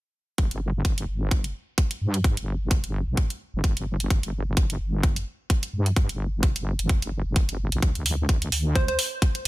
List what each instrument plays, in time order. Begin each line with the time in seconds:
0.38 wobble bass G1, kick, closed hi-hat
0.51 wobble bass G1, closed hi-hat
0.85 wobble bass G1, kick, closed hi-hat
0.98 closed hi-hat
1.08 wobble bass G1
1.31 kick, closed hi-hat
1.44 closed hi-hat
1.78 kick, closed hi-hat
1.91 closed hi-hat
2.01 wobble bass G2
2.14 closed hi-hat
2.24 kick, closed hi-hat
2.37 wobble bass G1, closed hi-hat
2.71 kick, closed hi-hat
2.84 wobble bass G1, closed hi-hat
3.07 wobble bass A#1
3.17 kick, closed hi-hat
3.30 closed hi-hat
3.54 wobble bass G1
3.64 kick, closed hi-hat
3.77 wobble bass G1, closed hi-hat
4.00 closed hi-hat
4.10 wobble bass G1, kick, closed hi-hat
4.23 wobble bass G1, closed hi-hat
4.57 wobble bass G1, kick, closed hi-hat
4.70 closed hi-hat
4.80 wobble bass G1
5.03 kick, closed hi-hat
5.16 closed hi-hat
5.50 kick, closed hi-hat
5.63 closed hi-hat
5.73 wobble bass G2
5.86 closed hi-hat
5.96 kick, closed hi-hat
6.09 wobble bass G1, closed hi-hat
6.43 kick, closed hi-hat
6.56 wobble bass G1, closed hi-hat
6.79 wobble bass G1, closed hi-hat
6.89 kick, closed hi-hat
7.02 wobble bass G1, closed hi-hat
7.25 wobble bass G1
7.36 kick, closed hi-hat
7.49 wobble bass G1, closed hi-hat
7.72 wobble bass A#1, closed hi-hat
7.82 wobble bass D2, kick, closed hi-hat
7.95 wobble bass D2, closed hi-hat
8.06 open hi-hat
8.29 wobble bass D2, kick, closed hi-hat
8.42 closed hi-hat
8.52 wobble bass D2, open hi-hat
8.75 digital synth lead C5, kick, closed hi-hat
8.88 digital synth lead C5, closed hi-hat
8.99 open hi-hat
9.22 kick, closed hi-hat
9.35 closed hi-hat